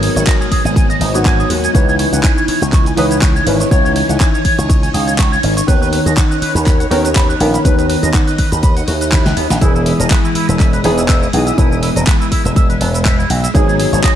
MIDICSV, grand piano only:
0, 0, Header, 1, 2, 480
1, 0, Start_track
1, 0, Tempo, 491803
1, 1703, Time_signature, 4, 2, 24, 8
1, 13815, End_track
2, 0, Start_track
2, 0, Title_t, "Grand piano"
2, 0, Program_c, 0, 0
2, 0, Note_on_c, 0, 54, 81
2, 0, Note_on_c, 0, 59, 76
2, 0, Note_on_c, 0, 63, 77
2, 0, Note_on_c, 0, 70, 93
2, 954, Note_off_c, 0, 54, 0
2, 957, Note_off_c, 0, 59, 0
2, 961, Note_off_c, 0, 63, 0
2, 964, Note_off_c, 0, 70, 0
2, 1107, Note_on_c, 0, 54, 78
2, 1112, Note_on_c, 0, 59, 69
2, 1118, Note_on_c, 0, 63, 70
2, 1124, Note_on_c, 0, 66, 84
2, 1673, Note_off_c, 0, 54, 0
2, 1676, Note_off_c, 0, 59, 0
2, 1679, Note_off_c, 0, 63, 0
2, 1682, Note_off_c, 0, 66, 0
2, 1692, Note_on_c, 0, 52, 85
2, 1697, Note_on_c, 0, 61, 73
2, 1705, Note_on_c, 0, 63, 74
2, 1709, Note_on_c, 0, 71, 93
2, 2872, Note_off_c, 0, 52, 0
2, 2874, Note_off_c, 0, 61, 0
2, 2878, Note_off_c, 0, 63, 0
2, 2880, Note_off_c, 0, 71, 0
2, 2896, Note_on_c, 0, 52, 100
2, 2901, Note_on_c, 0, 61, 93
2, 2903, Note_on_c, 0, 63, 94
2, 2908, Note_on_c, 0, 71, 110
2, 3040, Note_off_c, 0, 52, 0
2, 3042, Note_off_c, 0, 61, 0
2, 3043, Note_off_c, 0, 63, 0
2, 3046, Note_off_c, 0, 71, 0
2, 3377, Note_on_c, 0, 52, 78
2, 3382, Note_on_c, 0, 61, 70
2, 3386, Note_on_c, 0, 63, 71
2, 3389, Note_on_c, 0, 71, 90
2, 3594, Note_off_c, 0, 52, 0
2, 3597, Note_off_c, 0, 61, 0
2, 3599, Note_off_c, 0, 63, 0
2, 3600, Note_off_c, 0, 71, 0
2, 3613, Note_on_c, 0, 52, 80
2, 3619, Note_on_c, 0, 61, 81
2, 3626, Note_on_c, 0, 63, 79
2, 3632, Note_on_c, 0, 73, 96
2, 4792, Note_off_c, 0, 52, 0
2, 4795, Note_off_c, 0, 61, 0
2, 4799, Note_off_c, 0, 63, 0
2, 4802, Note_off_c, 0, 73, 0
2, 5533, Note_on_c, 0, 51, 84
2, 5540, Note_on_c, 0, 59, 74
2, 5545, Note_on_c, 0, 61, 78
2, 6712, Note_off_c, 0, 51, 0
2, 6716, Note_off_c, 0, 59, 0
2, 6718, Note_off_c, 0, 61, 0
2, 6739, Note_on_c, 0, 51, 105
2, 6743, Note_on_c, 0, 59, 96
2, 6746, Note_on_c, 0, 61, 94
2, 6749, Note_on_c, 0, 70, 112
2, 6881, Note_off_c, 0, 51, 0
2, 6883, Note_off_c, 0, 59, 0
2, 6885, Note_off_c, 0, 61, 0
2, 6886, Note_off_c, 0, 70, 0
2, 7223, Note_on_c, 0, 51, 74
2, 7226, Note_on_c, 0, 59, 68
2, 7230, Note_on_c, 0, 61, 71
2, 7232, Note_on_c, 0, 70, 86
2, 7437, Note_off_c, 0, 51, 0
2, 7439, Note_off_c, 0, 59, 0
2, 7441, Note_off_c, 0, 61, 0
2, 7442, Note_off_c, 0, 70, 0
2, 7456, Note_on_c, 0, 51, 82
2, 7462, Note_on_c, 0, 59, 76
2, 7466, Note_on_c, 0, 61, 79
2, 7475, Note_on_c, 0, 71, 94
2, 8634, Note_off_c, 0, 51, 0
2, 8637, Note_off_c, 0, 59, 0
2, 8639, Note_off_c, 0, 61, 0
2, 8644, Note_off_c, 0, 71, 0
2, 9376, Note_on_c, 0, 52, 83
2, 9381, Note_on_c, 0, 59, 72
2, 9393, Note_on_c, 0, 68, 90
2, 10554, Note_off_c, 0, 52, 0
2, 10556, Note_off_c, 0, 59, 0
2, 10562, Note_off_c, 0, 68, 0
2, 10580, Note_on_c, 0, 52, 103
2, 10581, Note_on_c, 0, 59, 90
2, 10586, Note_on_c, 0, 63, 97
2, 10589, Note_on_c, 0, 68, 117
2, 10722, Note_off_c, 0, 52, 0
2, 10722, Note_off_c, 0, 59, 0
2, 10724, Note_off_c, 0, 63, 0
2, 10726, Note_off_c, 0, 68, 0
2, 11060, Note_on_c, 0, 52, 78
2, 11066, Note_on_c, 0, 59, 70
2, 11068, Note_on_c, 0, 63, 72
2, 11071, Note_on_c, 0, 68, 90
2, 11276, Note_off_c, 0, 52, 0
2, 11278, Note_off_c, 0, 59, 0
2, 11280, Note_off_c, 0, 63, 0
2, 11281, Note_off_c, 0, 68, 0
2, 11291, Note_on_c, 0, 52, 85
2, 11299, Note_on_c, 0, 59, 80
2, 12471, Note_off_c, 0, 52, 0
2, 12475, Note_off_c, 0, 59, 0
2, 13214, Note_on_c, 0, 54, 84
2, 13221, Note_on_c, 0, 59, 77
2, 13228, Note_on_c, 0, 63, 79
2, 13234, Note_on_c, 0, 68, 93
2, 13815, Note_off_c, 0, 54, 0
2, 13815, Note_off_c, 0, 59, 0
2, 13815, Note_off_c, 0, 63, 0
2, 13815, Note_off_c, 0, 68, 0
2, 13815, End_track
0, 0, End_of_file